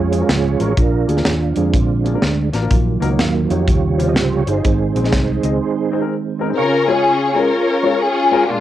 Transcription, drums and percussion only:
0, 0, Header, 1, 2, 480
1, 0, Start_track
1, 0, Key_signature, -5, "major"
1, 0, Tempo, 482315
1, 768, Time_signature, 4, 2, 24, 8
1, 8561, End_track
2, 0, Start_track
2, 0, Title_t, "Drums"
2, 125, Note_on_c, 9, 42, 65
2, 225, Note_off_c, 9, 42, 0
2, 290, Note_on_c, 9, 38, 101
2, 294, Note_on_c, 9, 42, 83
2, 390, Note_off_c, 9, 38, 0
2, 393, Note_off_c, 9, 42, 0
2, 597, Note_on_c, 9, 42, 67
2, 696, Note_off_c, 9, 42, 0
2, 768, Note_on_c, 9, 42, 80
2, 770, Note_on_c, 9, 36, 86
2, 868, Note_off_c, 9, 42, 0
2, 869, Note_off_c, 9, 36, 0
2, 1084, Note_on_c, 9, 42, 59
2, 1165, Note_on_c, 9, 38, 32
2, 1184, Note_off_c, 9, 42, 0
2, 1245, Note_on_c, 9, 42, 67
2, 1246, Note_off_c, 9, 38, 0
2, 1246, Note_on_c, 9, 38, 98
2, 1345, Note_off_c, 9, 42, 0
2, 1346, Note_off_c, 9, 38, 0
2, 1551, Note_on_c, 9, 42, 61
2, 1650, Note_off_c, 9, 42, 0
2, 1728, Note_on_c, 9, 36, 89
2, 1735, Note_on_c, 9, 42, 76
2, 1828, Note_off_c, 9, 36, 0
2, 1835, Note_off_c, 9, 42, 0
2, 2049, Note_on_c, 9, 42, 61
2, 2148, Note_off_c, 9, 42, 0
2, 2211, Note_on_c, 9, 38, 91
2, 2215, Note_on_c, 9, 42, 80
2, 2311, Note_off_c, 9, 38, 0
2, 2315, Note_off_c, 9, 42, 0
2, 2524, Note_on_c, 9, 42, 72
2, 2530, Note_on_c, 9, 38, 29
2, 2624, Note_off_c, 9, 42, 0
2, 2630, Note_off_c, 9, 38, 0
2, 2695, Note_on_c, 9, 42, 85
2, 2697, Note_on_c, 9, 36, 85
2, 2795, Note_off_c, 9, 42, 0
2, 2797, Note_off_c, 9, 36, 0
2, 3010, Note_on_c, 9, 42, 54
2, 3110, Note_off_c, 9, 42, 0
2, 3177, Note_on_c, 9, 42, 65
2, 3178, Note_on_c, 9, 38, 95
2, 3277, Note_off_c, 9, 38, 0
2, 3277, Note_off_c, 9, 42, 0
2, 3488, Note_on_c, 9, 42, 57
2, 3587, Note_off_c, 9, 42, 0
2, 3658, Note_on_c, 9, 36, 91
2, 3667, Note_on_c, 9, 42, 78
2, 3757, Note_off_c, 9, 36, 0
2, 3766, Note_off_c, 9, 42, 0
2, 3975, Note_on_c, 9, 42, 63
2, 4075, Note_off_c, 9, 42, 0
2, 4138, Note_on_c, 9, 38, 97
2, 4142, Note_on_c, 9, 42, 78
2, 4237, Note_off_c, 9, 38, 0
2, 4241, Note_off_c, 9, 42, 0
2, 4449, Note_on_c, 9, 42, 68
2, 4548, Note_off_c, 9, 42, 0
2, 4622, Note_on_c, 9, 42, 78
2, 4624, Note_on_c, 9, 36, 81
2, 4721, Note_off_c, 9, 42, 0
2, 4723, Note_off_c, 9, 36, 0
2, 4935, Note_on_c, 9, 42, 58
2, 5019, Note_on_c, 9, 38, 36
2, 5035, Note_off_c, 9, 42, 0
2, 5100, Note_on_c, 9, 42, 73
2, 5101, Note_off_c, 9, 38, 0
2, 5101, Note_on_c, 9, 36, 70
2, 5101, Note_on_c, 9, 38, 90
2, 5200, Note_off_c, 9, 42, 0
2, 5201, Note_off_c, 9, 36, 0
2, 5201, Note_off_c, 9, 38, 0
2, 5408, Note_on_c, 9, 42, 62
2, 5508, Note_off_c, 9, 42, 0
2, 8561, End_track
0, 0, End_of_file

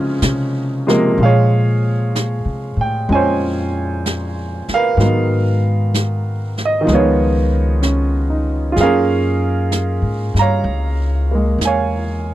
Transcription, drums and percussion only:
0, 0, Header, 1, 2, 480
1, 0, Start_track
1, 0, Key_signature, -5, "minor"
1, 0, Tempo, 956938
1, 593, Time_signature, 4, 2, 24, 8
1, 2025, Tempo, 944882
1, 6243, End_track
2, 0, Start_track
2, 0, Title_t, "Drums"
2, 111, Note_on_c, 9, 38, 52
2, 111, Note_on_c, 9, 44, 58
2, 161, Note_off_c, 9, 38, 0
2, 161, Note_off_c, 9, 44, 0
2, 444, Note_on_c, 9, 38, 32
2, 494, Note_off_c, 9, 38, 0
2, 602, Note_on_c, 9, 25, 36
2, 1081, Note_off_c, 9, 25, 0
2, 1081, Note_on_c, 9, 25, 31
2, 1081, Note_on_c, 9, 38, 39
2, 1081, Note_on_c, 9, 44, 45
2, 1131, Note_off_c, 9, 38, 0
2, 1131, Note_off_c, 9, 44, 0
2, 1557, Note_off_c, 9, 25, 0
2, 1557, Note_on_c, 9, 25, 33
2, 2035, Note_off_c, 9, 25, 0
2, 2035, Note_on_c, 9, 25, 32
2, 2035, Note_on_c, 9, 38, 37
2, 2035, Note_on_c, 9, 44, 44
2, 2086, Note_off_c, 9, 38, 0
2, 2086, Note_off_c, 9, 44, 0
2, 2352, Note_on_c, 9, 38, 23
2, 2403, Note_off_c, 9, 38, 0
2, 2512, Note_off_c, 9, 25, 0
2, 2512, Note_on_c, 9, 25, 32
2, 2512, Note_on_c, 9, 38, 22
2, 2562, Note_off_c, 9, 38, 0
2, 2993, Note_off_c, 9, 25, 0
2, 2993, Note_on_c, 9, 25, 26
2, 2993, Note_on_c, 9, 38, 38
2, 2993, Note_on_c, 9, 44, 53
2, 3044, Note_off_c, 9, 38, 0
2, 3044, Note_off_c, 9, 44, 0
2, 3313, Note_on_c, 9, 38, 25
2, 3364, Note_off_c, 9, 38, 0
2, 3468, Note_off_c, 9, 25, 0
2, 3468, Note_on_c, 9, 25, 29
2, 3468, Note_on_c, 9, 38, 26
2, 3519, Note_off_c, 9, 38, 0
2, 3950, Note_off_c, 9, 25, 0
2, 3950, Note_on_c, 9, 25, 27
2, 3950, Note_on_c, 9, 38, 41
2, 3950, Note_on_c, 9, 44, 44
2, 4000, Note_off_c, 9, 38, 0
2, 4000, Note_off_c, 9, 44, 0
2, 4426, Note_off_c, 9, 25, 0
2, 4426, Note_on_c, 9, 25, 33
2, 4426, Note_on_c, 9, 38, 26
2, 4477, Note_off_c, 9, 38, 0
2, 4910, Note_off_c, 9, 25, 0
2, 4910, Note_on_c, 9, 25, 35
2, 4910, Note_on_c, 9, 38, 38
2, 4910, Note_on_c, 9, 44, 44
2, 4961, Note_off_c, 9, 38, 0
2, 4961, Note_off_c, 9, 44, 0
2, 5235, Note_on_c, 9, 38, 23
2, 5286, Note_off_c, 9, 38, 0
2, 5393, Note_off_c, 9, 25, 0
2, 5393, Note_on_c, 9, 25, 31
2, 5872, Note_off_c, 9, 25, 0
2, 5872, Note_on_c, 9, 25, 35
2, 5872, Note_on_c, 9, 38, 43
2, 5872, Note_on_c, 9, 44, 53
2, 5923, Note_off_c, 9, 38, 0
2, 5923, Note_off_c, 9, 44, 0
2, 6243, Note_off_c, 9, 25, 0
2, 6243, End_track
0, 0, End_of_file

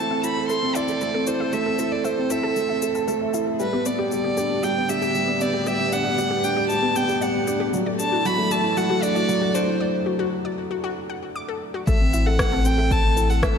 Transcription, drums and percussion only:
0, 0, Header, 1, 2, 480
1, 0, Start_track
1, 0, Tempo, 517241
1, 1421, Time_signature, 4, 2, 24, 8
1, 12603, End_track
2, 0, Start_track
2, 0, Title_t, "Drums"
2, 219, Note_on_c, 9, 82, 58
2, 312, Note_off_c, 9, 82, 0
2, 458, Note_on_c, 9, 82, 43
2, 551, Note_off_c, 9, 82, 0
2, 699, Note_on_c, 9, 82, 57
2, 791, Note_off_c, 9, 82, 0
2, 817, Note_on_c, 9, 82, 27
2, 910, Note_off_c, 9, 82, 0
2, 938, Note_on_c, 9, 82, 42
2, 1030, Note_off_c, 9, 82, 0
2, 1176, Note_on_c, 9, 82, 62
2, 1269, Note_off_c, 9, 82, 0
2, 1417, Note_on_c, 9, 82, 42
2, 1509, Note_off_c, 9, 82, 0
2, 1657, Note_on_c, 9, 82, 64
2, 1750, Note_off_c, 9, 82, 0
2, 1898, Note_on_c, 9, 82, 38
2, 1991, Note_off_c, 9, 82, 0
2, 2136, Note_on_c, 9, 82, 58
2, 2229, Note_off_c, 9, 82, 0
2, 2376, Note_on_c, 9, 82, 44
2, 2469, Note_off_c, 9, 82, 0
2, 2617, Note_on_c, 9, 82, 62
2, 2710, Note_off_c, 9, 82, 0
2, 2736, Note_on_c, 9, 82, 28
2, 2829, Note_off_c, 9, 82, 0
2, 2858, Note_on_c, 9, 82, 42
2, 2950, Note_off_c, 9, 82, 0
2, 3096, Note_on_c, 9, 82, 56
2, 3189, Note_off_c, 9, 82, 0
2, 3338, Note_on_c, 9, 82, 42
2, 3431, Note_off_c, 9, 82, 0
2, 3577, Note_on_c, 9, 82, 62
2, 3670, Note_off_c, 9, 82, 0
2, 3818, Note_on_c, 9, 82, 38
2, 3911, Note_off_c, 9, 82, 0
2, 4057, Note_on_c, 9, 82, 58
2, 4150, Note_off_c, 9, 82, 0
2, 4298, Note_on_c, 9, 82, 42
2, 4391, Note_off_c, 9, 82, 0
2, 4538, Note_on_c, 9, 82, 62
2, 4631, Note_off_c, 9, 82, 0
2, 4658, Note_on_c, 9, 82, 26
2, 4751, Note_off_c, 9, 82, 0
2, 4777, Note_on_c, 9, 82, 40
2, 4870, Note_off_c, 9, 82, 0
2, 5017, Note_on_c, 9, 82, 59
2, 5110, Note_off_c, 9, 82, 0
2, 5256, Note_on_c, 9, 82, 39
2, 5349, Note_off_c, 9, 82, 0
2, 5496, Note_on_c, 9, 82, 60
2, 5589, Note_off_c, 9, 82, 0
2, 5737, Note_on_c, 9, 82, 38
2, 5830, Note_off_c, 9, 82, 0
2, 5973, Note_on_c, 9, 82, 54
2, 6066, Note_off_c, 9, 82, 0
2, 6214, Note_on_c, 9, 82, 39
2, 6306, Note_off_c, 9, 82, 0
2, 6456, Note_on_c, 9, 82, 58
2, 6549, Note_off_c, 9, 82, 0
2, 6577, Note_on_c, 9, 82, 26
2, 6670, Note_off_c, 9, 82, 0
2, 6696, Note_on_c, 9, 82, 37
2, 6789, Note_off_c, 9, 82, 0
2, 6935, Note_on_c, 9, 82, 59
2, 7028, Note_off_c, 9, 82, 0
2, 7177, Note_on_c, 9, 82, 41
2, 7270, Note_off_c, 9, 82, 0
2, 7417, Note_on_c, 9, 82, 62
2, 7510, Note_off_c, 9, 82, 0
2, 7657, Note_on_c, 9, 82, 38
2, 7750, Note_off_c, 9, 82, 0
2, 7898, Note_on_c, 9, 82, 56
2, 7990, Note_off_c, 9, 82, 0
2, 8138, Note_on_c, 9, 82, 40
2, 8231, Note_off_c, 9, 82, 0
2, 8378, Note_on_c, 9, 82, 62
2, 8470, Note_off_c, 9, 82, 0
2, 8498, Note_on_c, 9, 82, 26
2, 8591, Note_off_c, 9, 82, 0
2, 8619, Note_on_c, 9, 82, 42
2, 8712, Note_off_c, 9, 82, 0
2, 8859, Note_on_c, 9, 82, 57
2, 8951, Note_off_c, 9, 82, 0
2, 11019, Note_on_c, 9, 36, 107
2, 11020, Note_on_c, 9, 82, 45
2, 11112, Note_off_c, 9, 36, 0
2, 11113, Note_off_c, 9, 82, 0
2, 11260, Note_on_c, 9, 82, 66
2, 11353, Note_off_c, 9, 82, 0
2, 11499, Note_on_c, 9, 36, 99
2, 11499, Note_on_c, 9, 37, 98
2, 11499, Note_on_c, 9, 82, 41
2, 11592, Note_off_c, 9, 36, 0
2, 11592, Note_off_c, 9, 37, 0
2, 11592, Note_off_c, 9, 82, 0
2, 11738, Note_on_c, 9, 82, 59
2, 11831, Note_off_c, 9, 82, 0
2, 11979, Note_on_c, 9, 36, 97
2, 11981, Note_on_c, 9, 82, 47
2, 12072, Note_off_c, 9, 36, 0
2, 12074, Note_off_c, 9, 82, 0
2, 12222, Note_on_c, 9, 82, 67
2, 12315, Note_off_c, 9, 82, 0
2, 12342, Note_on_c, 9, 82, 29
2, 12435, Note_off_c, 9, 82, 0
2, 12460, Note_on_c, 9, 36, 104
2, 12462, Note_on_c, 9, 37, 101
2, 12462, Note_on_c, 9, 82, 41
2, 12553, Note_off_c, 9, 36, 0
2, 12554, Note_off_c, 9, 37, 0
2, 12554, Note_off_c, 9, 82, 0
2, 12603, End_track
0, 0, End_of_file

